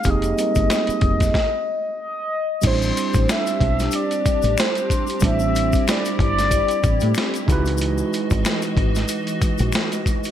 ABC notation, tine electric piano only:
X:1
M:4/4
L:1/8
Q:"Swing 16ths" 1/4=93
K:A
V:1 name="Tine electric piano"
[_B,=C_E=G_A] [=G,B,CE_B]3 z4 | [=G,=CDE=c]8 | [=G,=CDE=c]6- [G,CDEc] [^G,^DEFB]- | [G,^DEFB]6- [G,DEFB] z |]